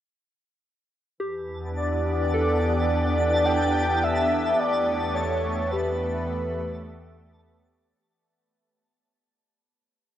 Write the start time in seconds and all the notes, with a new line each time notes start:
1.18 E2 E3 G4 A5
1.41 B3
1.47 D4
1.75 G4 D5
2.34 A4
3.45 D5 G5
4.04 E5
4.59 E2 E3 A3 D5
5.14 C#5
5.71 G4 B4